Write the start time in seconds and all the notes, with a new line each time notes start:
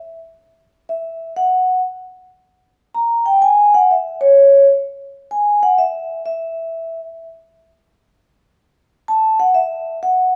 0.89 E5
1.37 F#5
2.95 A#5
3.26 G5
3.42 G#5
3.74 F#5
3.91 E5
4.21 C#5
5.31 G#5
5.63 F#5
5.78 E5
6.26 E5
9.08 A5
9.40 F#5
9.55 E5
10.03 F#5